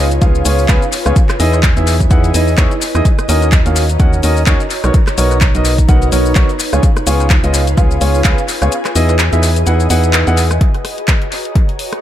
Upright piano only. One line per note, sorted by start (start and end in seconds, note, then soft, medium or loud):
0.22 0.39 B3 medium
0.22 0.39 C#4 medium
0.22 0.39 F4 medium
0.22 0.39 G#4 medium
0.22 0.39 F5 medium
0.45 0.63 B3 medium
0.45 0.63 C#4 medium
0.45 0.63 F4 medium
0.45 0.63 G#4 medium
0.45 0.63 C#5 medium
0.69 0.81 B3 loud
0.69 0.81 C#4 medium
0.69 0.81 F4 medium
0.69 0.81 G#4 medium
0.69 0.81 B4 loud
1.06 1.15 B3 medium
1.06 1.15 C#4 medium
1.06 1.15 F4 medium
1.06 1.15 G#4 medium
1.06 1.15 C#5 medium
1.40 1.57 B3 loud
1.40 1.57 D#4 medium
1.40 1.57 E4 medium
1.40 1.57 G#4 loud
1.40 1.57 D#5 loud
1.77 1.93 B3 medium
1.77 1.93 D#4 medium
1.77 1.93 E4 medium
1.77 1.93 G#4 medium
1.77 1.93 E5 medium
2.11 2.28 B3 medium
2.11 2.28 D#4 medium
2.11 2.28 E4 medium
2.11 2.28 G#4 medium
2.11 2.28 F#5 medium
2.34 2.52 B3 medium
2.34 2.52 D#4 medium
2.34 2.52 E4 medium
2.34 2.52 G#4 medium
2.34 2.52 D#5 medium
2.58 2.70 B3 loud
2.58 2.70 D#4 medium
2.58 2.70 E4 medium
2.58 2.70 G#4 loud
2.58 2.70 C#5 loud
2.95 3.04 B3 medium
2.95 3.04 D#4 medium
2.95 3.04 E4 medium
2.95 3.04 G#4 medium
2.95 3.04 D#5 medium
3.29 3.46 C#4 loud
3.29 3.47 D#4 medium
3.29 3.46 F#4 medium
3.29 3.46 A#4 loud
3.29 3.46 D#5 loud
3.66 3.82 C#4 medium
3.66 3.82 D#4 medium
3.66 3.82 F#4 medium
3.66 3.82 A#4 medium
3.66 3.82 F5 medium
4.00 4.17 C#4 medium
4.00 4.17 D#4 medium
4.00 4.17 F#4 medium
4.00 4.17 A#4 medium
4.00 4.17 F#5 medium
4.23 4.41 C#4 medium
4.23 4.41 D#4 medium
4.23 4.41 F#4 medium
4.23 4.41 A#4 medium
4.23 4.41 D#5 medium
4.47 4.59 C#4 loud
4.47 4.59 D#4 loud
4.47 4.59 F#4 medium
4.47 4.59 A#4 medium
4.47 4.59 C#5 loud
4.84 4.93 B3 medium
4.84 4.93 D#4 medium
4.84 4.93 F#4 medium
4.84 4.93 A#4 medium
4.84 4.93 C#5 medium
5.18 5.35 B3 loud
5.18 5.35 D#4 medium
5.18 5.35 F#4 medium
5.18 5.35 A#4 medium
5.18 5.35 C#5 loud
5.55 5.71 B3 medium
5.55 5.71 D#4 medium
5.55 5.71 F#4 medium
5.55 5.71 A#4 medium
5.55 5.71 D#5 medium
5.89 6.06 B3 medium
5.89 6.06 D#4 medium
5.89 6.06 F#4 medium
5.89 6.06 A#4 medium
5.89 6.06 F#5 medium
6.12 6.30 B3 medium
6.12 6.30 D#4 medium
6.12 6.30 F#4 medium
6.12 6.30 A#4 medium
6.12 6.30 C#5 loud
6.36 6.48 B3 loud
6.36 6.48 D#4 medium
6.36 6.48 F#4 medium
6.36 6.48 A#4 medium
6.36 6.48 C#5 loud
6.73 6.82 B3 medium
6.73 6.82 C#4 medium
6.73 6.82 F4 medium
6.73 6.82 G#4 medium
6.73 6.82 C#5 medium
7.07 7.24 B3 loud
7.07 7.24 C#4 medium
7.07 7.24 F4 medium
7.07 7.24 G#4 medium
7.07 7.24 C#5 loud
7.44 7.60 B3 medium
7.44 7.60 C#4 medium
7.44 7.60 F4 medium
7.44 7.60 G#4 medium
7.44 7.60 D#5 medium
7.78 7.95 B3 medium
7.78 7.95 C#4 medium
7.78 7.95 F4 medium
7.78 7.95 G#4 medium
7.78 7.95 F5 medium
8.01 8.19 B3 medium
8.01 8.19 C#4 medium
8.01 8.19 F4 medium
8.01 8.19 G#4 medium
8.01 8.19 C#5 medium
8.25 8.37 B3 loud
8.25 8.37 C#4 medium
8.25 8.37 F4 loud
8.25 8.37 G#4 medium
8.25 8.37 B4 loud
8.62 8.71 B3 medium
8.62 8.71 C#4 medium
8.62 8.71 F4 medium
8.62 8.71 G#4 medium
8.62 8.71 C#5 medium
8.96 9.13 B3 loud
8.96 9.13 D#4 medium
8.96 9.13 E4 medium
8.96 9.13 G#4 medium
8.96 9.13 D#5 loud
9.33 9.49 B3 medium
9.33 9.49 D#4 medium
9.33 9.49 E4 medium
9.33 9.49 G#4 medium
9.33 9.49 E5 medium
9.67 9.84 B3 medium
9.67 9.84 D#4 medium
9.67 9.84 E4 medium
9.67 9.84 G#4 medium
9.67 9.84 F#5 medium
9.90 10.24 B3 medium
9.90 10.24 D#4 medium
9.90 10.24 E4 medium
9.90 10.24 G#4 medium
9.90 10.24 F#5 loud
10.27 10.43 B3 medium
10.27 10.43 D#4 medium
10.27 10.43 E4 medium
10.27 10.43 G#4 medium
10.27 10.43 F#5 loud